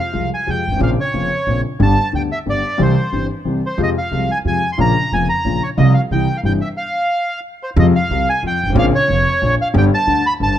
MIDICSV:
0, 0, Header, 1, 4, 480
1, 0, Start_track
1, 0, Key_signature, -4, "minor"
1, 0, Tempo, 330943
1, 1173, Time_signature, 3, 2, 24, 8
1, 15354, End_track
2, 0, Start_track
2, 0, Title_t, "Bandoneon"
2, 0, Program_c, 0, 23
2, 0, Note_on_c, 0, 77, 62
2, 428, Note_off_c, 0, 77, 0
2, 495, Note_on_c, 0, 80, 69
2, 720, Note_off_c, 0, 80, 0
2, 726, Note_on_c, 0, 79, 82
2, 1159, Note_off_c, 0, 79, 0
2, 1204, Note_on_c, 0, 77, 75
2, 1306, Note_off_c, 0, 77, 0
2, 1458, Note_on_c, 0, 73, 79
2, 2338, Note_off_c, 0, 73, 0
2, 2647, Note_on_c, 0, 81, 94
2, 3078, Note_off_c, 0, 81, 0
2, 3123, Note_on_c, 0, 79, 80
2, 3225, Note_off_c, 0, 79, 0
2, 3365, Note_on_c, 0, 76, 75
2, 3466, Note_off_c, 0, 76, 0
2, 3622, Note_on_c, 0, 74, 87
2, 4089, Note_off_c, 0, 74, 0
2, 4092, Note_on_c, 0, 72, 73
2, 4742, Note_off_c, 0, 72, 0
2, 5311, Note_on_c, 0, 72, 67
2, 5531, Note_off_c, 0, 72, 0
2, 5556, Note_on_c, 0, 75, 76
2, 5651, Note_off_c, 0, 75, 0
2, 5772, Note_on_c, 0, 77, 77
2, 6252, Note_off_c, 0, 77, 0
2, 6258, Note_on_c, 0, 80, 80
2, 6358, Note_off_c, 0, 80, 0
2, 6489, Note_on_c, 0, 80, 83
2, 6831, Note_off_c, 0, 80, 0
2, 6852, Note_on_c, 0, 84, 72
2, 6948, Note_off_c, 0, 84, 0
2, 6969, Note_on_c, 0, 82, 96
2, 7447, Note_on_c, 0, 80, 81
2, 7450, Note_off_c, 0, 82, 0
2, 7658, Note_off_c, 0, 80, 0
2, 7678, Note_on_c, 0, 82, 86
2, 8161, Note_off_c, 0, 82, 0
2, 8164, Note_on_c, 0, 73, 73
2, 8266, Note_off_c, 0, 73, 0
2, 8381, Note_on_c, 0, 75, 83
2, 8603, Note_off_c, 0, 75, 0
2, 8617, Note_on_c, 0, 77, 70
2, 8725, Note_off_c, 0, 77, 0
2, 8878, Note_on_c, 0, 79, 78
2, 9237, Note_off_c, 0, 79, 0
2, 9243, Note_on_c, 0, 77, 70
2, 9291, Note_off_c, 0, 77, 0
2, 9362, Note_on_c, 0, 79, 83
2, 9463, Note_off_c, 0, 79, 0
2, 9591, Note_on_c, 0, 76, 67
2, 9695, Note_off_c, 0, 76, 0
2, 9823, Note_on_c, 0, 77, 80
2, 10731, Note_off_c, 0, 77, 0
2, 11070, Note_on_c, 0, 72, 61
2, 11169, Note_off_c, 0, 72, 0
2, 11299, Note_on_c, 0, 75, 89
2, 11400, Note_off_c, 0, 75, 0
2, 11540, Note_on_c, 0, 77, 84
2, 12020, Note_off_c, 0, 77, 0
2, 12029, Note_on_c, 0, 80, 80
2, 12235, Note_off_c, 0, 80, 0
2, 12285, Note_on_c, 0, 79, 88
2, 12705, Note_off_c, 0, 79, 0
2, 12743, Note_on_c, 0, 77, 104
2, 12843, Note_off_c, 0, 77, 0
2, 12980, Note_on_c, 0, 73, 95
2, 13852, Note_off_c, 0, 73, 0
2, 13947, Note_on_c, 0, 77, 85
2, 14042, Note_off_c, 0, 77, 0
2, 14183, Note_on_c, 0, 79, 93
2, 14278, Note_off_c, 0, 79, 0
2, 14421, Note_on_c, 0, 81, 95
2, 14886, Note_off_c, 0, 81, 0
2, 14886, Note_on_c, 0, 83, 99
2, 14985, Note_off_c, 0, 83, 0
2, 15127, Note_on_c, 0, 81, 97
2, 15354, Note_off_c, 0, 81, 0
2, 15354, End_track
3, 0, Start_track
3, 0, Title_t, "Grand piano"
3, 0, Program_c, 1, 0
3, 178, Note_on_c, 1, 48, 43
3, 187, Note_on_c, 1, 36, 47
3, 187, Note_on_c, 1, 53, 35
3, 188, Note_on_c, 1, 56, 37
3, 192, Note_on_c, 1, 65, 46
3, 399, Note_off_c, 1, 48, 0
3, 400, Note_off_c, 1, 36, 0
3, 401, Note_off_c, 1, 53, 0
3, 401, Note_off_c, 1, 56, 0
3, 404, Note_off_c, 1, 65, 0
3, 672, Note_on_c, 1, 48, 41
3, 676, Note_on_c, 1, 53, 51
3, 684, Note_on_c, 1, 65, 45
3, 685, Note_on_c, 1, 41, 45
3, 686, Note_on_c, 1, 56, 41
3, 884, Note_off_c, 1, 48, 0
3, 890, Note_off_c, 1, 53, 0
3, 890, Note_off_c, 1, 65, 0
3, 891, Note_off_c, 1, 41, 0
3, 891, Note_off_c, 1, 56, 0
3, 979, Note_on_c, 1, 31, 41
3, 1036, Note_on_c, 1, 32, 52
3, 1046, Note_off_c, 1, 31, 0
3, 1104, Note_on_c, 1, 33, 65
3, 1105, Note_off_c, 1, 32, 0
3, 1148, Note_on_c, 1, 49, 69
3, 1156, Note_on_c, 1, 58, 58
3, 1160, Note_on_c, 1, 34, 80
3, 1160, Note_on_c, 1, 60, 60
3, 1161, Note_on_c, 1, 46, 79
3, 1168, Note_on_c, 1, 65, 67
3, 1169, Note_off_c, 1, 33, 0
3, 1364, Note_off_c, 1, 49, 0
3, 1368, Note_off_c, 1, 58, 0
3, 1369, Note_off_c, 1, 60, 0
3, 1370, Note_off_c, 1, 34, 0
3, 1370, Note_off_c, 1, 46, 0
3, 1373, Note_off_c, 1, 65, 0
3, 1646, Note_on_c, 1, 49, 44
3, 1646, Note_on_c, 1, 58, 40
3, 1651, Note_on_c, 1, 65, 49
3, 1652, Note_on_c, 1, 29, 47
3, 1653, Note_on_c, 1, 41, 49
3, 1657, Note_on_c, 1, 60, 36
3, 1852, Note_off_c, 1, 58, 0
3, 1853, Note_off_c, 1, 49, 0
3, 1855, Note_off_c, 1, 29, 0
3, 1855, Note_off_c, 1, 65, 0
3, 1856, Note_off_c, 1, 41, 0
3, 1858, Note_off_c, 1, 60, 0
3, 2137, Note_on_c, 1, 49, 42
3, 2138, Note_on_c, 1, 58, 38
3, 2139, Note_on_c, 1, 46, 53
3, 2140, Note_on_c, 1, 34, 50
3, 2149, Note_on_c, 1, 60, 39
3, 2149, Note_on_c, 1, 65, 46
3, 2337, Note_off_c, 1, 49, 0
3, 2338, Note_off_c, 1, 46, 0
3, 2338, Note_off_c, 1, 58, 0
3, 2339, Note_off_c, 1, 34, 0
3, 2343, Note_off_c, 1, 60, 0
3, 2343, Note_off_c, 1, 65, 0
3, 2600, Note_on_c, 1, 50, 72
3, 2602, Note_on_c, 1, 31, 79
3, 2603, Note_on_c, 1, 55, 63
3, 2606, Note_on_c, 1, 43, 90
3, 2607, Note_on_c, 1, 67, 74
3, 2608, Note_on_c, 1, 59, 66
3, 2809, Note_off_c, 1, 50, 0
3, 2810, Note_off_c, 1, 31, 0
3, 2810, Note_off_c, 1, 55, 0
3, 2812, Note_off_c, 1, 43, 0
3, 2812, Note_off_c, 1, 67, 0
3, 2813, Note_off_c, 1, 59, 0
3, 3082, Note_on_c, 1, 50, 52
3, 3087, Note_on_c, 1, 38, 53
3, 3087, Note_on_c, 1, 55, 39
3, 3088, Note_on_c, 1, 67, 45
3, 3095, Note_on_c, 1, 59, 41
3, 3291, Note_off_c, 1, 50, 0
3, 3292, Note_off_c, 1, 38, 0
3, 3292, Note_off_c, 1, 55, 0
3, 3293, Note_off_c, 1, 67, 0
3, 3296, Note_off_c, 1, 59, 0
3, 3562, Note_on_c, 1, 50, 47
3, 3569, Note_on_c, 1, 43, 47
3, 3569, Note_on_c, 1, 55, 41
3, 3570, Note_on_c, 1, 31, 51
3, 3571, Note_on_c, 1, 59, 43
3, 3571, Note_on_c, 1, 67, 52
3, 3768, Note_off_c, 1, 50, 0
3, 3772, Note_off_c, 1, 31, 0
3, 3772, Note_off_c, 1, 43, 0
3, 3772, Note_off_c, 1, 55, 0
3, 3773, Note_off_c, 1, 59, 0
3, 3773, Note_off_c, 1, 67, 0
3, 4030, Note_on_c, 1, 55, 66
3, 4032, Note_on_c, 1, 36, 88
3, 4034, Note_on_c, 1, 52, 68
3, 4035, Note_on_c, 1, 67, 72
3, 4037, Note_on_c, 1, 60, 63
3, 4040, Note_on_c, 1, 48, 82
3, 4241, Note_off_c, 1, 55, 0
3, 4242, Note_off_c, 1, 36, 0
3, 4243, Note_off_c, 1, 52, 0
3, 4243, Note_off_c, 1, 67, 0
3, 4245, Note_off_c, 1, 60, 0
3, 4246, Note_off_c, 1, 48, 0
3, 4533, Note_on_c, 1, 52, 38
3, 4534, Note_on_c, 1, 55, 38
3, 4538, Note_on_c, 1, 60, 37
3, 4539, Note_on_c, 1, 31, 48
3, 4542, Note_on_c, 1, 43, 47
3, 4544, Note_on_c, 1, 67, 45
3, 4733, Note_off_c, 1, 52, 0
3, 4734, Note_off_c, 1, 55, 0
3, 4736, Note_off_c, 1, 31, 0
3, 4736, Note_off_c, 1, 60, 0
3, 4738, Note_off_c, 1, 43, 0
3, 4739, Note_off_c, 1, 67, 0
3, 5000, Note_on_c, 1, 60, 38
3, 5004, Note_on_c, 1, 52, 39
3, 5006, Note_on_c, 1, 48, 46
3, 5006, Note_on_c, 1, 55, 38
3, 5007, Note_on_c, 1, 36, 48
3, 5008, Note_on_c, 1, 67, 49
3, 5209, Note_off_c, 1, 60, 0
3, 5211, Note_off_c, 1, 52, 0
3, 5212, Note_off_c, 1, 48, 0
3, 5213, Note_off_c, 1, 36, 0
3, 5213, Note_off_c, 1, 55, 0
3, 5213, Note_off_c, 1, 67, 0
3, 5479, Note_on_c, 1, 41, 74
3, 5479, Note_on_c, 1, 53, 84
3, 5484, Note_on_c, 1, 48, 67
3, 5488, Note_on_c, 1, 65, 78
3, 5489, Note_on_c, 1, 56, 60
3, 5691, Note_off_c, 1, 41, 0
3, 5694, Note_off_c, 1, 48, 0
3, 5696, Note_off_c, 1, 56, 0
3, 5696, Note_off_c, 1, 65, 0
3, 5697, Note_off_c, 1, 53, 0
3, 5972, Note_on_c, 1, 36, 53
3, 5972, Note_on_c, 1, 48, 48
3, 5972, Note_on_c, 1, 53, 35
3, 5973, Note_on_c, 1, 56, 38
3, 5980, Note_on_c, 1, 65, 44
3, 6178, Note_off_c, 1, 36, 0
3, 6179, Note_off_c, 1, 53, 0
3, 6179, Note_off_c, 1, 56, 0
3, 6182, Note_off_c, 1, 48, 0
3, 6182, Note_off_c, 1, 65, 0
3, 6449, Note_on_c, 1, 48, 43
3, 6454, Note_on_c, 1, 41, 50
3, 6454, Note_on_c, 1, 56, 35
3, 6457, Note_on_c, 1, 53, 51
3, 6458, Note_on_c, 1, 65, 48
3, 6659, Note_off_c, 1, 48, 0
3, 6661, Note_off_c, 1, 41, 0
3, 6661, Note_off_c, 1, 56, 0
3, 6663, Note_off_c, 1, 65, 0
3, 6664, Note_off_c, 1, 53, 0
3, 6928, Note_on_c, 1, 34, 84
3, 6933, Note_on_c, 1, 49, 69
3, 6933, Note_on_c, 1, 65, 68
3, 6934, Note_on_c, 1, 46, 80
3, 6934, Note_on_c, 1, 53, 65
3, 6939, Note_on_c, 1, 58, 63
3, 7137, Note_off_c, 1, 34, 0
3, 7140, Note_off_c, 1, 46, 0
3, 7140, Note_off_c, 1, 49, 0
3, 7140, Note_off_c, 1, 53, 0
3, 7140, Note_off_c, 1, 65, 0
3, 7143, Note_off_c, 1, 58, 0
3, 7432, Note_on_c, 1, 49, 38
3, 7432, Note_on_c, 1, 53, 39
3, 7436, Note_on_c, 1, 41, 52
3, 7442, Note_on_c, 1, 29, 47
3, 7443, Note_on_c, 1, 58, 39
3, 7445, Note_on_c, 1, 65, 49
3, 7629, Note_off_c, 1, 49, 0
3, 7629, Note_off_c, 1, 53, 0
3, 7630, Note_off_c, 1, 41, 0
3, 7633, Note_off_c, 1, 29, 0
3, 7634, Note_off_c, 1, 58, 0
3, 7635, Note_off_c, 1, 65, 0
3, 7899, Note_on_c, 1, 34, 46
3, 7900, Note_on_c, 1, 49, 48
3, 7903, Note_on_c, 1, 53, 40
3, 7903, Note_on_c, 1, 58, 40
3, 7905, Note_on_c, 1, 46, 46
3, 7909, Note_on_c, 1, 65, 49
3, 8100, Note_off_c, 1, 34, 0
3, 8101, Note_off_c, 1, 49, 0
3, 8102, Note_off_c, 1, 53, 0
3, 8102, Note_off_c, 1, 58, 0
3, 8103, Note_off_c, 1, 46, 0
3, 8105, Note_off_c, 1, 65, 0
3, 8375, Note_on_c, 1, 48, 78
3, 8379, Note_on_c, 1, 55, 69
3, 8380, Note_on_c, 1, 53, 64
3, 8380, Note_on_c, 1, 65, 75
3, 8381, Note_on_c, 1, 36, 90
3, 8580, Note_off_c, 1, 53, 0
3, 8580, Note_off_c, 1, 55, 0
3, 8580, Note_off_c, 1, 65, 0
3, 8581, Note_off_c, 1, 36, 0
3, 8583, Note_off_c, 1, 48, 0
3, 8867, Note_on_c, 1, 48, 48
3, 8867, Note_on_c, 1, 55, 39
3, 8873, Note_on_c, 1, 52, 41
3, 8875, Note_on_c, 1, 36, 53
3, 8886, Note_on_c, 1, 64, 48
3, 9063, Note_off_c, 1, 55, 0
3, 9066, Note_off_c, 1, 48, 0
3, 9067, Note_off_c, 1, 36, 0
3, 9067, Note_off_c, 1, 52, 0
3, 9073, Note_off_c, 1, 64, 0
3, 9327, Note_on_c, 1, 48, 45
3, 9328, Note_on_c, 1, 55, 41
3, 9331, Note_on_c, 1, 31, 55
3, 9336, Note_on_c, 1, 64, 45
3, 9337, Note_on_c, 1, 52, 42
3, 9338, Note_on_c, 1, 43, 53
3, 9532, Note_off_c, 1, 48, 0
3, 9533, Note_off_c, 1, 55, 0
3, 9534, Note_off_c, 1, 31, 0
3, 9537, Note_off_c, 1, 52, 0
3, 9537, Note_off_c, 1, 64, 0
3, 9538, Note_off_c, 1, 43, 0
3, 11261, Note_on_c, 1, 41, 101
3, 11261, Note_on_c, 1, 48, 83
3, 11265, Note_on_c, 1, 53, 91
3, 11268, Note_on_c, 1, 56, 73
3, 11275, Note_on_c, 1, 65, 94
3, 11466, Note_off_c, 1, 41, 0
3, 11466, Note_off_c, 1, 48, 0
3, 11469, Note_off_c, 1, 53, 0
3, 11470, Note_off_c, 1, 56, 0
3, 11474, Note_off_c, 1, 65, 0
3, 11761, Note_on_c, 1, 48, 55
3, 11762, Note_on_c, 1, 36, 59
3, 11958, Note_off_c, 1, 36, 0
3, 11958, Note_off_c, 1, 48, 0
3, 12229, Note_on_c, 1, 41, 60
3, 12229, Note_on_c, 1, 53, 59
3, 12431, Note_off_c, 1, 41, 0
3, 12431, Note_off_c, 1, 53, 0
3, 12546, Note_on_c, 1, 31, 47
3, 12598, Note_off_c, 1, 31, 0
3, 12612, Note_on_c, 1, 32, 66
3, 12652, Note_on_c, 1, 33, 75
3, 12661, Note_off_c, 1, 32, 0
3, 12688, Note_on_c, 1, 58, 79
3, 12689, Note_on_c, 1, 34, 101
3, 12690, Note_on_c, 1, 49, 91
3, 12692, Note_on_c, 1, 46, 98
3, 12695, Note_on_c, 1, 65, 85
3, 12700, Note_on_c, 1, 60, 73
3, 12711, Note_off_c, 1, 33, 0
3, 12900, Note_off_c, 1, 34, 0
3, 12900, Note_off_c, 1, 58, 0
3, 12901, Note_off_c, 1, 49, 0
3, 12902, Note_off_c, 1, 46, 0
3, 12903, Note_off_c, 1, 65, 0
3, 12906, Note_off_c, 1, 60, 0
3, 13168, Note_on_c, 1, 41, 52
3, 13173, Note_on_c, 1, 29, 61
3, 13376, Note_off_c, 1, 41, 0
3, 13378, Note_off_c, 1, 29, 0
3, 13660, Note_on_c, 1, 34, 66
3, 13660, Note_on_c, 1, 46, 59
3, 13858, Note_off_c, 1, 34, 0
3, 13858, Note_off_c, 1, 46, 0
3, 14120, Note_on_c, 1, 50, 78
3, 14122, Note_on_c, 1, 55, 81
3, 14123, Note_on_c, 1, 59, 82
3, 14124, Note_on_c, 1, 43, 99
3, 14125, Note_on_c, 1, 31, 96
3, 14132, Note_on_c, 1, 67, 90
3, 14325, Note_off_c, 1, 50, 0
3, 14326, Note_off_c, 1, 55, 0
3, 14327, Note_off_c, 1, 43, 0
3, 14327, Note_off_c, 1, 59, 0
3, 14328, Note_off_c, 1, 31, 0
3, 14331, Note_off_c, 1, 67, 0
3, 14605, Note_on_c, 1, 38, 56
3, 14605, Note_on_c, 1, 50, 64
3, 14807, Note_off_c, 1, 38, 0
3, 14807, Note_off_c, 1, 50, 0
3, 15082, Note_on_c, 1, 43, 59
3, 15085, Note_on_c, 1, 31, 65
3, 15285, Note_off_c, 1, 43, 0
3, 15286, Note_off_c, 1, 31, 0
3, 15354, End_track
4, 0, Start_track
4, 0, Title_t, "Upright bass"
4, 0, Program_c, 2, 32
4, 209, Note_on_c, 2, 36, 48
4, 411, Note_off_c, 2, 36, 0
4, 694, Note_on_c, 2, 41, 43
4, 895, Note_off_c, 2, 41, 0
4, 983, Note_on_c, 2, 31, 48
4, 1036, Note_off_c, 2, 31, 0
4, 1045, Note_on_c, 2, 32, 48
4, 1099, Note_off_c, 2, 32, 0
4, 1107, Note_on_c, 2, 33, 58
4, 1157, Note_off_c, 2, 33, 0
4, 1166, Note_on_c, 2, 34, 87
4, 1372, Note_off_c, 2, 34, 0
4, 1654, Note_on_c, 2, 29, 51
4, 1857, Note_off_c, 2, 29, 0
4, 2130, Note_on_c, 2, 34, 52
4, 2334, Note_off_c, 2, 34, 0
4, 2608, Note_on_c, 2, 31, 85
4, 2813, Note_off_c, 2, 31, 0
4, 3091, Note_on_c, 2, 38, 55
4, 3294, Note_off_c, 2, 38, 0
4, 3574, Note_on_c, 2, 31, 48
4, 3774, Note_off_c, 2, 31, 0
4, 4054, Note_on_c, 2, 36, 86
4, 4253, Note_off_c, 2, 36, 0
4, 4531, Note_on_c, 2, 31, 47
4, 4732, Note_off_c, 2, 31, 0
4, 5003, Note_on_c, 2, 36, 42
4, 5211, Note_off_c, 2, 36, 0
4, 5480, Note_on_c, 2, 41, 78
4, 5692, Note_off_c, 2, 41, 0
4, 5969, Note_on_c, 2, 36, 46
4, 6177, Note_off_c, 2, 36, 0
4, 6451, Note_on_c, 2, 41, 51
4, 6660, Note_off_c, 2, 41, 0
4, 6939, Note_on_c, 2, 34, 77
4, 7143, Note_off_c, 2, 34, 0
4, 7425, Note_on_c, 2, 29, 50
4, 7625, Note_off_c, 2, 29, 0
4, 7903, Note_on_c, 2, 34, 51
4, 8102, Note_off_c, 2, 34, 0
4, 8378, Note_on_c, 2, 36, 87
4, 8580, Note_off_c, 2, 36, 0
4, 8863, Note_on_c, 2, 36, 58
4, 9062, Note_off_c, 2, 36, 0
4, 9333, Note_on_c, 2, 31, 55
4, 9535, Note_off_c, 2, 31, 0
4, 11263, Note_on_c, 2, 41, 108
4, 11467, Note_off_c, 2, 41, 0
4, 11744, Note_on_c, 2, 36, 59
4, 11949, Note_off_c, 2, 36, 0
4, 12225, Note_on_c, 2, 41, 51
4, 12429, Note_off_c, 2, 41, 0
4, 12526, Note_on_c, 2, 31, 51
4, 12580, Note_off_c, 2, 31, 0
4, 12588, Note_on_c, 2, 32, 59
4, 12644, Note_off_c, 2, 32, 0
4, 12653, Note_on_c, 2, 33, 62
4, 12691, Note_off_c, 2, 33, 0
4, 12699, Note_on_c, 2, 34, 111
4, 12905, Note_off_c, 2, 34, 0
4, 13194, Note_on_c, 2, 29, 65
4, 13389, Note_off_c, 2, 29, 0
4, 13662, Note_on_c, 2, 34, 56
4, 13859, Note_off_c, 2, 34, 0
4, 14132, Note_on_c, 2, 31, 100
4, 14332, Note_off_c, 2, 31, 0
4, 14609, Note_on_c, 2, 38, 66
4, 14809, Note_off_c, 2, 38, 0
4, 15086, Note_on_c, 2, 31, 61
4, 15287, Note_off_c, 2, 31, 0
4, 15354, End_track
0, 0, End_of_file